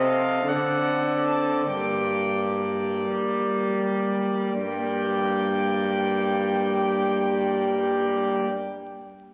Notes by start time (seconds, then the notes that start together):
Already playing: C3 C4 A4 D#5
0.08 F5
0.42 C4 A4 D5
0.47 D3 F#5
1.28 A5
1.68 A#3 G4 D5 G5
1.72 G2
3.09 G3
4.58 G2 G3 G5
4.65 A#3
4.72 G4
4.79 D5
4.86 G5